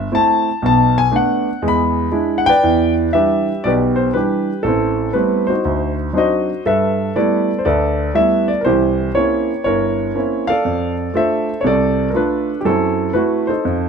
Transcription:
grand piano
Already playing: E5
0.12 A3 C4 E4 A5
0.62 B1 B2 A5
0.98 G#5
1.11 A3 B3 D4
1.16 F#5
1.62 E2 G#3
1.68 B5
2.12 G#3 D4 E4
2.38 F#5
2.46 B4 D5 G5
2.63 E2 E3
3.13 E3 G3 D4 G4 B4 E5
3.64 B1 B2 G4 B4 D5
3.96 C5
4.14 E3 G3 D4 G4 B4
4.63 A1 E4 A4
4.67 C4
5.13 G3 A3 B3 C4 B4
5.47 D#4 F#4 C5
5.65 D2
6.13 F#3 C4 D4 D#4 F#4 C5
6.18 D#5
6.66 G2 A4 B4 E5
7.15 G3 A3 B3 E4 A4 B4 D5
7.59 C5
7.65 D2 A4 B4 D5
8.14 G3 A3 B3 E4 E5
8.48 D5
8.61 E3 A#4 C5
8.65 C2 E4 G4
9.15 A#3 C4 C#4 E4 A#4 C#5
9.64 G1 E4 A#4 C#5
10.15 A#3 C4 C#4 E4
10.47 A4 D5 F5
10.65 F2
11.14 A3 D4 F4 A4 C5 E5
11.61 C2 C3 C#5
11.67 A4 D5
12.10 A3 D4 A#4
12.14 D4 F4 B4
12.61 G4
12.65 F#2 F#3 C4 E4 A4
13.13 A3 E4 F#4 B4
13.47 D#4 A4 C5
13.65 F2

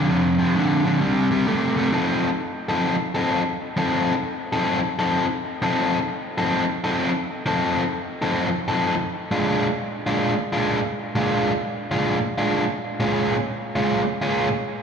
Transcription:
overdriven electric guitar
0.09 F2 C3
0.38 F2 C3
0.55 F2 D3
0.84 F2 D3
1.01 C3 G3
1.31 C3 G3
1.47 C3 A3
1.77 C3 A3
1.92 F3 C4 D#4 A4
2.69 F3 C4 D#4 A4
3.15 F3 C4 D#4 A4
3.77 F3 C4 D#4 A4
4.53 F3 C4 D#4 A4
4.99 F3 C4 D#4 A4
5.62 F3 C4 D#4 A4
6.38 F3 C4 D#4 A4
6.84 F3 C4 D#4 A4
7.46 F3 C4 D#4 A4
8.22 F3 C4 D#4 A4
8.68 F3 C4 D#4 A4
9.31 A#2 G#3 D4 F4
10.07 A#2 G#3 D4 F4
10.53 A#2 G#3 D4 F4
11.15 A#2 G#3 D4 F4
11.91 A#2 G#3 D4 F4
12.38 A#2 G#3 D4 F4
13.00 A#2 G#3 C#4 F4
13.76 A#2 G#3 C#4 F4
14.22 A#2 G#3 C#4 F4

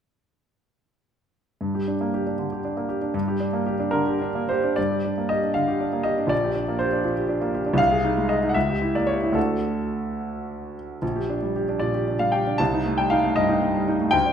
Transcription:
grand piano
1.61 G2
1.75 G4
1.88 D4
2.01 A#3
2.14 G4
2.27 D4
2.39 D3
2.52 G4
2.65 D4
2.77 A#3
2.89 G4
3.02 D4
3.14 G2
3.28 G4
3.40 D4
3.53 A#3
3.66 G4
3.80 D4
3.91 D3 A#4
4.06 G4
4.22 D4
4.35 A#3
4.49 G4 C5
4.64 D4
4.76 G2 D5
4.91 G4
5.05 D4
5.18 A#3
5.29 G4 D#5
5.43 D4
5.54 D3 F5
5.68 G4
5.81 D4
5.93 A#3
6.03 G4 D#5
6.18 D4
6.27 A#1 D5
6.44 G4
6.56 D4
6.68 A#3
6.79 G4 C5
6.93 D4
7.04 A#2
7.16 G4
7.29 D4
7.41 A#3
7.54 G4
7.66 D4
7.74 C2
7.78 F5
7.92 G#4
8.05 D#4
8.18 G#3
8.29 G#4 D#5
8.43 D#4
8.49 F#5
8.54 C#2 E5
8.69 G4
8.81 E4
8.95 A#3 D5
9.07 G4 C#5
9.23 E4
9.32 D2 A3 D4 F#4 A4
11.02 A#1
11.16 G4
11.30 D4
11.43 G3
11.56 G4
11.69 D4
11.79 A#2 D5
11.94 G4
12.08 D4
12.19 G3 F5
12.32 G4 G5
12.47 D4
12.58 C2 A5
12.73 D#4
12.85 A3
12.98 G3 G5
13.10 D#4 F5
13.24 A3
13.36 G2 D#5
13.49 D#4
13.62 A3
13.75 G3
13.88 D#4
14.01 A3
14.11 D2 G5
14.26 D4

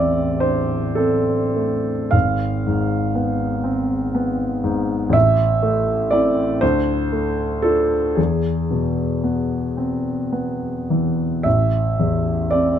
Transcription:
grand piano
Already playing: A1 E2 C4 D5 E5
0.40 D4 C5
0.95 C4 A4
1.56 A3
2.11 G#1 F5
2.67 G#2
3.15 B3
3.64 C4
4.15 B3
4.64 G#2
5.09 A1 E5
5.63 A3
6.11 C4 E4 D5
6.61 D2 C5
7.12 A3
7.62 D4 F4 A4
8.16 E2 G#4
8.70 B2
9.24 B3
9.77 C4
10.33 B3
10.90 E3
11.43 A1 E5
11.99 E2
12.51 C4 D5

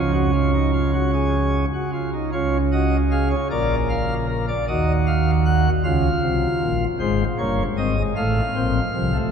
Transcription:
pipe organ
Already playing: C#2 C#3 F4 C#5
0.13 F#4
0.33 F4
0.53 D#4
0.73 F4
0.94 F#4
1.14 G#4
1.74 F#4
1.93 F4
2.13 D#4
2.32 C#2 C#3 F4 C#5
2.72 F#4 D#5
3.11 G#4 F5
3.31 C#5
3.50 A#1 A#2 A#4 D5
3.89 F5
4.29 A#4
4.48 D5
4.68 D#2 D#3 F#4 D#5
5.07 F5
5.45 F#5
5.84 C#2 C#3 F4 F5
6.22 C2 C3
6.61 A#1 A#2
7.00 G#1 G#2 G#3 C5
7.38 G1 G2 A#3 C#5
7.77 G#1 G#2 C4 D#5
7.97 G#3
8.16 A1 A2 A3 F5
8.55 A#1 A#2 C4
8.94 C2 C3 F3
9.14 A3

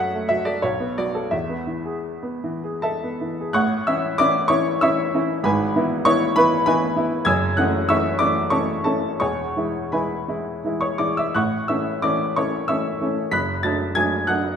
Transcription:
upright piano
Already playing: F#2 F#3 A3 A4 C#5 E5 F#5
0.14 A3
0.29 F#3 E5
0.45 A4 D5
0.62 B1 C#5
0.80 B3
0.98 F#3 D5
1.15 A4
1.31 E2 E5
1.49 B3
1.67 E3
1.86 G#4
2.23 B3
2.44 E3
2.64 G#4
2.82 A4 E5 A5
3.04 B3
3.21 E3
3.40 G#4
3.53 A1 A2 F#5 C#6 F#6
3.87 E3 C#4 E4 E5 E6
4.18 E3 C#4 E4 D5 D6
4.48 E3 C#4 E4 C#5 C#6
4.81 E3 C#4 E4 E5 C#6 E6
5.14 E3 C#4 E4
5.44 G#1 G#2 B4 G#5 B5
5.76 E3 B3 E4
6.05 E3 B3 E4 C#5 C#6
6.36 E3 B3 E4 B4 B5
6.66 E3 B3 E4 B4 G#5 B5
6.96 E3 B3 E4
7.25 F#1 F#2 G#5 E6 G#6
7.57 E3 A3 C#4 F#5 F#6
7.89 E3 A3 C#4 E5 C#6 E6
8.19 E3 A3 C#4 D5 D6
8.50 E3 A3 C#4 C#5 A5 C#6
8.84 E3 A3 C#4 A4 A5
9.20 E1 E2 C#5 G#5 C#6
9.57 E3 G#3 E4
9.92 E3 G#3 E4 B4 G#5 B5
10.28 E3 G#3 E4
10.64 E3 G#3 E4
10.81 C#5 C#6
10.98 E3 G#3 E4 D5 D6
11.17 E5 E6
11.35 A1 A2 F#5 C#6 F#6
11.68 E3 A3 C#4 E5 E6
12.02 E3 A3 C#4 D5 D6
12.36 E3 A3 C#4 C#5 C#6
12.68 E3 A3 C#4 E5 C#6 E6
13.01 E3 A3 C#4
13.31 F#1 F#2 B5 F#6 B6
13.63 F#3 A3 D4 A5 A6
13.95 F#3 A3 D4 G#5 G#6
14.27 F#3 A3 D4 F#5 F#6

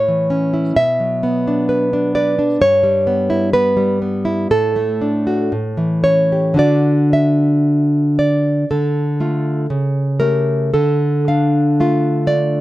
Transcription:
nylon-string guitar
Already playing: A2 C#5
0.08 E3
0.30 C#4
0.54 E4
0.76 B2 E5
1.00 F#3
1.23 B3
1.47 D4
1.69 B4
1.93 D4
2.15 B4 D5
2.39 D4
2.61 G2 C#5
2.83 G3
3.07 B3
3.30 E4
3.53 B3 B4
3.77 G3
4.02 B3
4.25 E4
4.51 A2 A4
4.76 A3
5.02 D4
5.27 F#4
5.52 A2
5.77 E3
6.04 C#4 C#5
6.32 G4
6.54 D3 D4 F#4
6.59 D5
7.13 E5
8.19 D5
8.71 D3 A4
9.20 A3 F4
9.70 C#3
10.20 A3 G4 A#4
10.74 D3 A4
11.28 D4 F5
11.80 A3 F4
12.27 A3 D5

